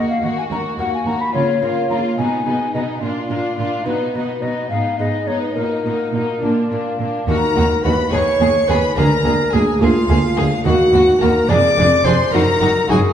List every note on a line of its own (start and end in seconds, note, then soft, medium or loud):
0.00 0.21 D#2 soft
0.00 0.22 A#3 soft
0.00 0.48 A#3 soft
0.00 0.21 F#4 soft
0.00 0.48 F#4 soft
0.00 0.21 A#4 soft
0.00 0.48 A#4 soft
0.10 0.26 F5 medium
0.22 0.31 D#2 soft
0.22 0.48 D#2 soft
0.22 0.49 A#3 soft
0.22 0.49 F#4 soft
0.22 0.49 A#4 soft
0.22 0.38 F#5 medium
0.38 0.44 G#5 medium
0.50 0.76 D#2 soft
0.50 0.59 D#2 medium
0.50 0.78 A#3 soft
0.50 0.76 F#4 soft
0.50 0.78 A#4 soft
0.50 0.58 A#5 medium
0.78 1.04 D#2 soft
0.78 0.87 D#2 soft
0.78 1.30 A#3 soft
0.78 1.05 A#3 soft
0.78 1.04 F#4 soft
0.78 1.30 F#4 soft
0.78 1.05 A#4 soft
0.78 1.30 A#4 soft
0.78 0.93 F#5 medium
0.94 1.08 G#5 medium
1.06 1.14 D#2 medium
1.06 1.31 D#2 soft
1.06 1.33 A#3 soft
1.06 1.33 F#4 soft
1.06 1.33 A#4 soft
1.06 1.22 A#5 medium
1.21 1.34 B5 medium
1.34 1.59 C#3 soft
1.34 1.42 C#3 medium
1.34 1.61 A#3 soft
1.34 1.61 F4 soft
1.34 1.60 A#4 soft
1.34 1.89 C#5 medium
1.61 1.87 C#3 soft
1.61 1.70 C#3 soft
1.61 2.14 A#3 soft
1.61 1.89 A#3 soft
1.61 1.89 F4 soft
1.61 2.15 F4 soft
1.61 1.88 A#4 soft
1.61 2.15 A#4 soft
1.89 2.15 C#3 soft
1.89 1.99 C#3 soft
1.89 2.17 A#3 soft
1.89 2.17 F4 soft
1.89 2.17 A#4 soft
1.89 1.97 A#5 medium
2.18 2.26 B2 medium
2.18 2.44 B2 soft
2.18 2.45 B3 soft
2.18 2.45 D#4 soft
2.18 2.45 G#4 soft
2.18 2.73 G#5 medium
2.45 2.71 B2 soft
2.45 2.54 B2 soft
2.45 2.73 B3 soft
2.45 2.98 D#4 soft
2.45 2.72 D#4 soft
2.45 2.98 G#4 soft
2.45 2.72 G#4 soft
2.73 2.82 B2 medium
2.73 3.00 B2 soft
2.73 3.02 B3 soft
2.73 3.01 D#4 soft
2.73 3.01 G#4 soft
2.73 2.81 D#5 medium
3.01 3.27 A#2 soft
3.01 3.10 A#2 soft
3.01 3.29 D4 soft
3.01 3.29 F4 soft
3.01 3.28 A#4 soft
3.29 3.38 A#2 soft
3.29 3.56 A#2 soft
3.29 3.58 D4 soft
3.29 3.82 D4 soft
3.29 3.56 F4 soft
3.29 3.83 F4 soft
3.29 3.56 A#4 soft
3.29 3.83 A#4 soft
3.57 3.66 A#2 soft
3.57 3.84 A#2 soft
3.57 3.86 D4 soft
3.57 3.85 F4 soft
3.57 3.85 A#4 soft
3.86 4.12 B2 soft
3.86 3.95 B2 medium
3.86 4.14 B3 soft
3.86 4.14 D#4 soft
3.86 4.13 F#4 soft
3.86 4.44 B4 medium
4.14 4.22 B2 soft
4.14 4.40 B2 soft
4.14 4.67 B3 soft
4.14 4.42 B3 soft
4.14 4.41 D#4 soft
4.14 4.67 D#4 soft
4.14 4.42 F#4 soft
4.14 4.67 F#4 soft
4.42 4.51 B2 medium
4.42 4.68 B2 soft
4.42 4.70 B3 soft
4.42 4.70 D#4 soft
4.42 4.71 F#4 soft
4.42 4.69 D#5 medium
4.70 4.96 G#2 soft
4.70 4.79 G#2 soft
4.70 4.98 B3 soft
4.70 4.98 D#4 soft
4.70 4.99 G#4 soft
4.70 4.98 F5 medium
4.99 5.25 G#2 soft
4.99 5.07 G#2 soft
4.99 5.52 B3 soft
4.99 5.26 B3 soft
4.99 5.52 D#4 soft
4.99 5.27 D#4 soft
4.99 5.52 G#4 soft
4.99 5.28 G#4 soft
4.99 5.29 D#5 medium
5.27 5.53 G#2 soft
5.27 5.36 G#2 soft
5.27 5.56 B3 soft
5.27 5.56 D#4 soft
5.27 5.57 G#4 soft
5.27 5.41 C#5 medium
5.42 5.54 B4 medium
5.55 5.65 A#2 soft
5.55 5.82 A#2 soft
5.55 5.83 A#3 soft
5.55 5.85 D#4 soft
5.55 5.85 F#4 soft
5.55 6.96 A#4 medium
5.84 5.93 A#2 soft
5.84 6.11 A#2 soft
5.84 6.12 A#3 soft
5.84 6.39 A#3 soft
5.84 6.13 D#4 soft
5.84 6.39 D#4 soft
5.84 6.14 F#4 soft
5.84 6.39 F#4 soft
6.13 6.21 A#2 medium
6.13 6.40 A#2 soft
6.13 6.40 A#3 soft
6.13 6.42 D#4 soft
6.13 6.42 F#4 soft
6.41 6.50 A#2 soft
6.41 6.68 A#2 soft
6.41 6.69 A#3 soft
6.41 6.70 D4 soft
6.41 6.70 F4 soft
6.70 6.79 A#2 soft
6.70 6.97 A#2 soft
6.70 6.98 A#3 soft
6.70 7.25 A#3 soft
6.70 6.99 D4 soft
6.70 7.25 D4 soft
6.70 6.99 F4 soft
6.70 7.25 F4 soft
6.99 7.07 A#2 soft
6.99 7.26 A#2 soft
6.99 7.26 A#3 soft
6.99 7.28 D4 soft
6.99 7.28 F4 soft
7.28 7.36 D#2 medium
7.28 7.54 D#2 medium
7.28 7.36 A#3 medium
7.28 8.09 A#3 soft
7.28 8.09 D#4 soft
7.28 7.36 F#4 medium
7.28 8.10 F#4 soft
7.28 7.85 A#4 medium
7.28 7.80 A#5 loud
7.55 7.64 D#2 medium
7.55 7.82 D#2 medium
7.55 7.63 A#3 medium
7.55 7.64 F#4 medium
7.83 7.92 D#2 medium
7.83 8.10 D#2 medium
7.83 7.92 A#3 medium
7.83 7.93 F#4 medium
7.83 8.11 B4 medium
7.83 8.12 B5 medium
8.11 8.20 D#2 medium
8.11 8.39 D#2 medium
8.11 8.20 B3 medium
8.11 8.94 B3 soft
8.11 8.94 D#4 soft
8.11 8.20 G#4 medium
8.11 8.94 G#4 soft
8.11 8.70 C#5 medium
8.11 8.68 C#6 medium
8.40 8.48 D#2 medium
8.40 8.66 D#2 medium
8.40 8.48 B3 medium
8.40 8.49 G#4 medium
8.68 8.77 D#2 medium
8.68 8.94 D#2 medium
8.68 8.77 B3 medium
8.68 8.77 G#4 medium
8.68 8.95 B4 medium
8.68 8.97 B5 medium
8.96 9.05 D2 medium
8.96 9.22 D2 medium
8.96 9.05 A#3 medium
8.96 9.04 G#4 medium
8.96 9.55 A#4 medium
8.96 9.52 A#5 loud
9.25 9.33 D2 medium
9.25 9.50 D2 medium
9.25 9.33 D2 medium
9.25 9.34 A#3 medium
9.25 9.33 G#4 medium
9.53 9.78 D2 medium
9.53 9.61 D2 medium
9.53 9.61 A#3 medium
9.53 9.61 G#4 medium
9.53 9.83 G#4 medium
9.53 9.82 G#5 medium
9.81 9.89 D2 medium
9.81 10.07 D2 medium
9.81 9.89 A#3 medium
9.81 10.62 A#3 medium
9.81 10.38 F4 medium
9.81 10.62 F4 soft
9.81 9.90 G#4 medium
9.81 10.62 G#4 medium
9.81 10.64 F5 loud
10.09 10.17 D2 medium
10.09 10.35 D2 medium
10.09 10.17 A#3 medium
10.09 10.17 G#4 medium
10.37 10.63 D2 medium
10.37 10.45 D2 medium
10.37 10.46 D2 medium
10.37 10.45 A#3 medium
10.37 10.45 G#4 medium
10.65 10.90 D#2 medium
10.65 10.73 D#2 medium
10.65 10.74 D#2 medium
10.65 11.45 A#3 soft
10.65 10.73 A#3 medium
10.65 11.45 D#4 medium
10.65 11.20 F#4 medium
10.65 11.46 F#4 medium
10.65 10.74 F#4 medium
10.65 11.20 F#5 loud
10.93 11.01 D#2 medium
10.93 11.19 D#2 medium
10.93 11.02 D#2 medium
10.93 11.01 A#3 medium
10.93 11.02 F#4 medium
11.20 11.29 D#2 medium
11.20 11.47 D#2 medium
11.20 11.29 A#3 medium
11.20 11.30 F#4 medium
11.20 11.50 A#4 medium
11.20 11.49 A#5 medium
11.49 11.57 F1 medium
11.49 11.58 F2 medium
11.49 11.75 F2 medium
11.49 12.30 G#3 medium
11.49 11.57 D4 medium
11.49 12.30 D4 soft
11.49 11.58 G#4 medium
11.49 12.30 G#4 medium
11.49 12.06 D5 loud
11.49 12.05 D6 loud
11.77 11.86 F1 medium
11.77 11.86 F2 medium
11.77 12.03 F2 medium
11.77 11.85 D4 medium
11.77 11.86 G#4 medium
12.05 12.13 F1 medium
12.05 12.13 F2 medium
12.05 12.31 F2 medium
12.05 12.13 D4 medium
12.05 12.13 G#4 medium
12.05 12.34 C5 medium
12.05 12.34 C6 loud
12.32 12.42 F#1 medium
12.32 12.41 F#2 medium
12.32 12.59 F#2 medium
12.32 12.41 D#4 medium
12.32 12.42 F#4 medium
12.32 12.89 A#4 loud
12.32 12.89 A#5 loud
12.61 12.69 F#1 medium
12.61 12.87 F#2 medium
12.61 12.70 F#2 medium
12.61 12.69 D#4 medium
12.61 12.69 F#4 medium
12.88 12.97 F#1 medium
12.88 13.13 F#2 medium
12.88 12.98 F#2 medium
12.88 12.97 D#4 medium
12.88 12.96 F#4 medium
12.88 13.13 G#4 loud
12.88 12.98 G#5 medium